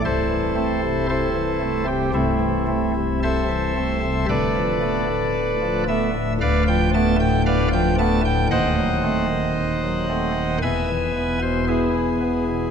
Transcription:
<<
  \new Staff \with { instrumentName = "Pipe organ" } { \time 4/4 \key a \minor \tempo 4 = 57 <e' a' c''>4 <e' a' c''>8. g'16 <a c' e'>4 <a' c'' e''>4 | <a' b' d''>4. e''8 <b' d'' f''>16 g''16 a''16 g''16 <b' d'' f''>16 g''16 a''16 g''16 | <bis' dis'' fis''>2 <b' e'' gis''>8. c''16 <b e' gis'>4 | }
  \new Staff \with { instrumentName = "Pipe organ" } { \clef bass \time 4/4 \key a \minor << { c,16 e16 <a c'>16 c8 e16 <a c'>16 c16 c,16 e16 <a c'>16 c8 e16 <a c'>16 c16 | d,16 f16 <a b>16 a,8 f16 <a b>16 a,16 d,16 f16 <a b>16 a,8 f16 <a b>16 a,16 | dis,16 fis16 <a bis>16 dis8 fis16 <a bis>16 dis16 e,16 e16 b16 b,8 e16 b16 b,16 | } \\ { c,,2 c,,2 | d,,2 d,,2 | dis,,2 e,,2 | } >> }
>>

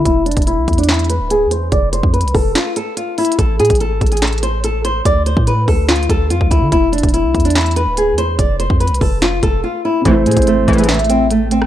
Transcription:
<<
  \new Staff \with { instrumentName = "Soft synth lead" } { \time 4/4 \key a \minor \tempo 4 = 144 r1 | r1 | r1 | r1 |
r1 | r1 | c''2 e''4 r4 | }
  \new Staff \with { instrumentName = "Nylon-string guitar" } { \time 4/4 \key a \minor e'8 d'8 e'8. d'16 e'8 b'8 gis'8 c''8 | d''8 c''8 b'8 a'8 f'8 a'8 f'8 e'8 | a'8 gis'8 a'8. gis'16 a'8 c''8 a'8 c''8 | d''8 c''8 b'8 a'8 f'8 a'8 f'8 e'8 |
e'8 d'8 e'8. d'16 e'8 b'8 gis'8 c''8 | d''8 c''8 b'8 a'8 f'8 a'8 f'8 e'8 | a8 gis8 a8. gis16 a8 c'8 a8 c'8 | }
  \new Staff \with { instrumentName = "Grand piano" } { \clef bass \time 4/4 \key a \minor r1 | r1 | r1 | r1 |
r1 | r1 | <c e a e'>1 | }
  \new Staff \with { instrumentName = "Analog polysynth" } { \clef bass \time 4/4 \key a \minor r1 | r1 | r1 | r1 |
r1 | r1 | <c, a, e>16 r4 r16 <c, a, e>8. r4. r16 | }
  \new Staff \with { instrumentName = "808-style bass" } { \clef bass \time 4/4 \key a \minor e,,8 f,,16 e,,8 b,,16 e,4~ e,16 d,,8~ d,,32 e,8~ e,32 | f,,8. f,8 c,16 f,,8 r2 | a,,8 a,16 a,,8 gis,,16 a,,2~ a,,8 | d,8. a,8. d,4 d,8 f,16 d,8 d16 |
e,,8 f,,16 e,,8 b,,16 e,4~ e,16 d,,8~ d,,32 e,8~ e,32 | f,,8. f,8 c,16 f,,4 f,,8 r4 | a,,8 a,16 a,,8 gis,,16 a,,2~ a,,8 | }
  \new DrumStaff \with { instrumentName = "Drums" } \drummode { \time 4/4 <hh bd>8 hh32 hh32 <hh bd>32 hh32 hh8 <hh bd>32 hh32 hh32 hh32 <hc hh sn>32 hh32 hh32 hh32 hh8 hh8 hh8 | <hh bd>8 hh16 bd16 \tuplet 3/2 { hh16 hh16 hh16 <hho bd>16 r16 r16 } <hc hh sn>8 hh8 \tuplet 3/2 { hh16 r16 r16 <hh hho>16 hh16 hh16 } | <hh bd>8 hh32 hh32 <hh bd>32 hh32 hh8 <hh bd>32 hh32 hh32 hh32 <hc hh sn>32 hh32 hh32 hh32 hh8 hh8 hh8 | <hh bd>8 hh16 bd16 hh8 <hho bd>8 \tuplet 3/2 { <hc hh sn>16 hh16 hh16 <hh bd>16 r16 r16 } hh16 bd16 <hh bd>8 |
<hh bd>8 hh32 hh32 <hh bd>32 hh32 hh8 <hh bd>32 hh32 hh32 hh32 <hc hh sn>32 hh32 hh32 hh32 hh8 hh8 hh8 | <hh bd>8 hh16 bd16 \tuplet 3/2 { hh16 hh16 hh16 <hho bd>16 r16 r16 } <hc hh sn>8 <hh bd>8 r4 | <hh bd>8 hh32 hh32 <hh bd>32 hh32 hh8 <hh bd>32 hh32 hh32 hh32 <hc hh sn>32 hh32 hh32 hh32 hh8 hh8 hh16 ss16 | }
>>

